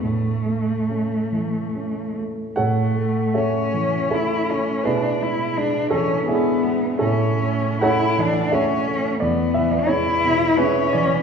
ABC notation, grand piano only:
X:1
M:3/4
L:1/16
Q:1/4=83
K:A
V:1 name="Grand piano"
z12 | [Acf]4 [Ace]4 [EAc]4 | [EGB]6 A2 [DEG]4 | [CEA]4 [Acf]4 [Ace]4 |
d2 e d c4 [EGB]2 d2 |]
V:2 name="Grand piano"
A,,2 A,2 [A,C]2 E,2 [A,C]2 A,2 | A,,2 A,2 [A,C]2 E,2 [A,C]2 A,2 | B,,2 G,2 [G,D]2 E,2 G,2 G,2 | A,,2 A,2 [A,C]2 E,2 [A,C]2 A,2 |
E,,2 E,2 [G,B,]2 B,,2 [G,B,]2 E,2 |]